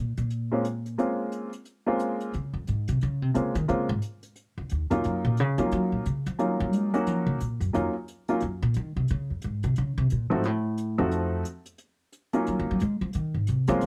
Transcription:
0.00 0.17 A#2 medium
0.17 0.94 A#2 medium
0.17 closed hi-hat soft
0.30 closed hi-hat soft
0.51 0.63 G#3 medium
0.51 0.64 A#3 soft
0.51 0.64 C4 soft
0.51 0.64 C#4 medium
0.51 0.64 F4 medium
0.65 closed hi-hat soft
0.86 closed hi-hat soft
0.98 1.49 G#3 soft
0.98 1.49 A#3 soft
0.98 1.49 C4 soft
0.98 1.49 C#4 soft
0.98 1.49 F4 medium
0.98 closed hi-hat soft
1.32 closed hi-hat soft
1.53 closed hi-hat soft
1.65 closed hi-hat soft
1.86 2.31 G#3 medium
1.86 2.31 A#3 medium
1.86 2.31 C4 medium
1.86 2.31 C#4 soft
1.86 2.31 F4 medium
1.99 closed hi-hat soft
2.20 closed hi-hat soft
2.33 2.53 C#3 medium
2.33 closed hi-hat soft
2.53 2.67 F2 medium
2.67 2.88 G#2 medium
2.67 closed hi-hat soft
2.88 3.01 C3 medium
2.88 closed hi-hat soft
3.01 3.22 C#3 medium
3.01 closed hi-hat soft
3.22 3.35 C3 medium
3.34 3.55 C#3 medium
3.34 3.53 G#3 soft
3.34 3.53 A#3 soft
3.34 3.54 C4 soft
3.34 3.54 C#4 soft
3.34 3.54 F4 medium
3.34 closed hi-hat soft
3.55 3.68 D#3 loud
3.55 closed hi-hat soft
3.68 3.89 C#3 medium
3.68 3.87 G#3 medium
3.68 3.87 A#3 soft
3.68 3.87 C4 soft
3.68 3.87 C#4 soft
3.68 3.87 F4 medium
3.68 closed hi-hat soft
3.89 3.97 G#2 loud
4.02 closed hi-hat soft
4.23 closed hi-hat soft
4.36 closed hi-hat soft
4.58 4.70 C#2 medium
4.69 4.90 D#2 medium
4.69 closed hi-hat soft
4.90 5.03 F2 medium
4.90 5.35 F#3 medium
4.90 5.35 A#3 medium
4.90 5.35 C#4 soft
4.90 5.35 D#4 medium
4.90 5.35 F4 medium
4.90 closed hi-hat soft
5.04 5.24 F#2 medium
5.04 closed hi-hat soft
5.25 5.40 A#2 medium
5.37 5.58 C#3 medium
5.37 closed hi-hat soft
5.58 5.71 F3 loud
5.58 6.02 F#3 soft
5.58 6.03 A#3 soft
5.58 6.02 C#4 soft
5.58 6.03 D#4 soft
5.58 6.03 F4 medium
5.58 closed hi-hat soft
5.71 5.92 F#3 loud
5.71 closed hi-hat soft
5.92 6.05 A#2 medium
6.06 6.26 C#3 medium
6.06 closed hi-hat soft
6.26 6.41 F3 medium
6.26 closed hi-hat soft
6.39 6.89 F#3 medium
6.39 6.60 F#3 loud
6.39 6.89 A#3 soft
6.39 6.89 C#4 soft
6.39 6.89 D#4 soft
6.39 6.89 F4 medium
6.39 closed hi-hat soft
6.60 6.73 F3 medium
6.73 6.93 G#3 loud
6.73 closed hi-hat soft
6.93 7.07 F#3 medium
6.93 7.38 F#3 medium
6.93 7.38 A#3 medium
6.93 7.38 C#4 medium
6.93 7.38 D#4 medium
6.93 7.38 F#4 medium
6.93 closed hi-hat soft
7.07 7.26 F3 medium
7.07 closed hi-hat soft
7.27 7.39 C#3 medium
7.40 7.60 A#2 medium
7.40 closed hi-hat soft
7.60 7.73 F#2 medium
7.60 closed hi-hat soft
7.73 7.87 F2 medium
7.73 7.92 F#3 medium
7.73 7.92 A#3 soft
7.73 7.93 C#4 medium
7.73 7.93 D#4 medium
7.73 7.93 F4 medium
7.73 closed hi-hat soft
8.08 closed hi-hat soft
8.28 8.40 F#3 medium
8.28 8.40 A#3 soft
8.28 8.40 C#4 soft
8.28 8.41 D#4 soft
8.28 8.41 F4 medium
8.28 closed hi-hat soft
8.40 8.62 F#2 medium
8.40 closed hi-hat soft
8.62 8.75 A#2 medium
8.74 8.96 D#3 medium
8.74 closed hi-hat soft
8.97 9.09 C3 medium
9.08 9.30 C#3 medium
9.08 closed hi-hat soft
9.30 9.43 F2 medium
9.42 9.63 G#2 medium
9.42 closed hi-hat soft
9.63 9.76 C3 medium
9.63 closed hi-hat soft
9.76 9.97 C#3 medium
9.76 closed hi-hat soft
9.98 10.10 C3 loud
10.10 10.31 A#2 medium
10.10 closed hi-hat soft
10.30 10.45 G#2 medium
10.30 10.42 F3 medium
10.30 10.42 A3 medium
10.30 10.42 C4 medium
10.30 10.43 D#4 medium
10.30 10.43 F#4 medium
10.44 10.98 A2 medium
10.44 closed hi-hat soft
10.78 closed hi-hat soft
10.98 11.42 F2 medium
10.98 11.42 F3 medium
10.98 11.42 A3 medium
10.98 11.43 C4 medium
10.98 11.43 D#4 medium
10.98 11.43 F#4 medium
11.11 closed hi-hat soft
11.45 closed hi-hat medium
11.66 closed hi-hat soft
11.78 closed hi-hat soft
12.12 closed hi-hat soft
12.33 12.77 F#3 medium
12.33 12.77 A#3 medium
12.33 12.78 C#4 medium
12.33 12.78 D#4 medium
12.33 12.78 F4 medium
12.33 closed hi-hat soft
12.47 12.58 F#3 medium
12.47 closed hi-hat soft
12.59 12.69 F3 medium
12.71 12.81 F#3 medium
12.80 13.01 G#3 loud
12.80 closed hi-hat soft
13.01 13.14 F3 medium
13.13 13.34 D#3 medium
13.13 closed hi-hat soft
13.34 13.47 G#2 medium
13.47 13.68 C3 medium
13.47 closed hi-hat soft
13.67 13.81 F3 loud
13.67 13.86 G#3 medium
13.67 13.86 A#3 medium
13.67 13.86 C4 medium
13.67 13.86 C#4 medium
13.67 13.86 F4 medium
13.67 closed hi-hat soft
13.81 13.86 D#3 medium
13.81 closed hi-hat soft

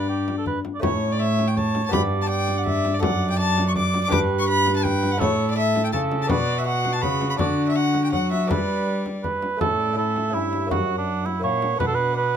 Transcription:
0.00 0.61 G2 soft
0.00 0.65 G2 medium
0.00 0.78 B3 soft
0.00 0.79 D4 soft
0.00 0.79 G4 soft
0.00 0.45 D5 medium
0.09 0.35 G4 medium
0.28 frame drum soft
0.38 0.47 A4 medium
0.46 0.60 B4 medium
0.46 frame drum soft
0.65 frame drum soft
0.75 0.82 D5 medium
0.80 1.89 A2 medium
0.80 1.88 A3 medium
0.80 1.88 C#4 medium
0.80 1.89 E4 medium
0.80 1.17 C#5 medium
0.80 frame drum medium
0.84 1.13 C#5 medium
1.12 1.21 D5 medium
1.19 1.56 C#5 medium
1.19 1.49 E5 loud
1.39 frame drum medium
1.48 1.58 G5 medium
1.56 1.92 C#5 medium
1.56 1.84 A5 medium
1.56 frame drum soft
1.75 frame drum medium
1.86 2.97 B3 medium
1.86 1.92 A5 loud
1.90 3.04 G2 medium
1.90 2.98 G2 medium
1.90 2.98 D4 medium
1.90 2.98 G4 medium
1.90 2.28 D5 medium
1.90 2.01 B5 medium
1.90 frame drum medium
2.22 2.28 A5 medium
2.29 3.00 D5 medium
2.29 2.59 G5 loud
2.48 frame drum soft
2.57 2.65 F#5 medium
2.65 2.96 E5 medium
2.65 frame drum medium
2.85 frame drum medium
2.94 3.01 D5 loud
2.99 4.11 F#2 medium
2.99 4.08 F#2 medium
2.99 4.07 D4 medium
2.99 4.07 A4 medium
2.99 3.38 D5 medium
2.99 3.29 F#5 medium
2.99 frame drum medium
3.30 3.38 G5 loud
3.39 3.75 D5 medium
3.39 3.66 A5 loud
3.58 frame drum medium
3.68 3.71 C#6 medium
3.76 4.14 D5 medium
3.76 4.03 D6 medium
3.76 frame drum medium
3.94 frame drum medium
4.03 4.10 D6 loud
4.08 5.17 G2 medium
4.08 5.22 G2 medium
4.08 5.15 D4 medium
4.08 5.16 G4 medium
4.08 5.17 B4 medium
4.08 4.19 D6 loud
4.12 4.47 B4 medium
4.12 frame drum medium
4.39 4.48 C#6 loud
4.48 4.83 B4 medium
4.48 4.75 B5 loud
4.66 frame drum medium
4.76 4.85 A5 medium
4.84 5.21 B4 medium
4.84 5.13 G5 medium
4.84 frame drum medium
5.03 frame drum soft
5.12 5.19 F#5 loud
5.17 5.95 A2 medium
5.17 5.89 A2 medium
5.17 6.24 A3 medium
5.17 6.25 E4 medium
5.17 5.56 A4 medium
5.17 6.26 C#5 medium
5.17 5.47 C#5 medium
5.21 frame drum medium
5.50 5.57 D5 loud
5.57 5.92 A4 medium
5.57 5.84 E5 loud
5.75 frame drum soft
5.85 5.88 G5 medium
5.92 6.31 C#3 medium
5.92 6.26 C#3 medium
5.92 6.29 A4 medium
5.92 6.00 A5 medium
5.92 frame drum soft
6.12 frame drum medium
6.22 6.29 A5 medium
6.27 7.04 B2 medium
6.27 6.99 B2 medium
6.27 6.65 F#4 medium
6.27 7.35 B4 medium
6.27 7.35 D5 medium
6.27 6.60 D5 loud
6.27 frame drum medium
6.58 6.66 E5 medium
6.66 7.01 F#4 medium
6.66 6.94 F#5 medium
6.85 frame drum medium
6.93 7.03 A5 medium
7.01 7.39 C#3 medium
7.01 7.36 C#3 medium
7.01 7.38 F#4 medium
7.01 7.29 B5 medium
7.01 frame drum medium
7.21 frame drum medium
7.30 7.34 B5 medium
7.36 8.08 D3 medium
7.36 8.14 D3 medium
7.36 8.45 D4 medium
7.36 7.74 F#4 medium
7.36 8.45 A4 medium
7.36 7.66 D5 medium
7.36 frame drum medium
7.68 7.77 E5 medium
7.75 8.11 F#4 medium
7.75 8.03 F#5 medium
7.94 frame drum soft
8.04 8.12 G5 medium
8.12 8.46 F#3 medium
8.12 8.51 F#3 medium
8.12 8.52 F#4 medium
8.12 8.30 F#5 medium
8.12 frame drum soft
8.31 8.49 E5 medium
8.31 frame drum medium
8.47 9.38 G3 medium
8.47 9.42 G3 medium
8.47 9.56 D4 medium
8.47 9.57 B4 medium
8.47 9.07 B4 medium
8.47 9.22 D5 medium
8.47 frame drum medium
9.06 frame drum soft
9.24 9.58 B4 medium
9.24 frame drum medium
9.42 frame drum soft
9.57 10.30 A2 soft
9.57 9.92 A3 soft
9.57 9.93 C#4 soft
9.57 9.94 E4 soft
9.57 9.97 A4 medium
9.61 10.35 A2 medium
9.61 9.81 C#5 medium
9.61 frame drum medium
9.79 10.00 D5 medium
9.93 10.29 A3 soft
9.93 10.30 C#4 soft
9.93 10.32 E4 soft
9.97 10.36 A4 medium
9.97 10.73 E5 medium
10.16 frame drum soft
10.30 10.72 G2 medium
10.30 10.66 A3 soft
10.30 10.67 C#4 soft
10.30 10.68 E4 soft
10.34 10.67 G2 soft
10.34 10.71 E4 medium
10.53 frame drum soft
10.66 11.38 A#3 soft
10.66 11.40 C#4 soft
10.66 11.40 E4 soft
10.71 11.39 F#2 soft
10.71 11.45 F#2 medium
10.71 10.97 F#4 medium
10.71 11.43 F#5 soft
10.71 frame drum medium
10.98 11.27 D4 medium
11.26 11.43 E4 medium
11.26 frame drum soft
11.39 11.76 A#2 medium
11.39 11.77 A#3 soft
11.39 11.76 C#4 soft
11.39 11.77 E4 soft
11.44 11.80 A#2 medium
11.44 11.79 C#5 medium
11.44 12.37 F#5 medium
11.62 frame drum soft
11.76 12.37 B2 soft
11.76 12.12 B3 soft
11.76 12.14 D4 soft
11.76 11.89 B4 medium
11.76 frame drum medium
11.80 12.37 B2 medium
11.87 11.96 A4 medium
11.95 12.16 B4 medium
12.13 12.37 B3 soft
12.13 12.37 B4 medium
12.13 12.37 D5 soft

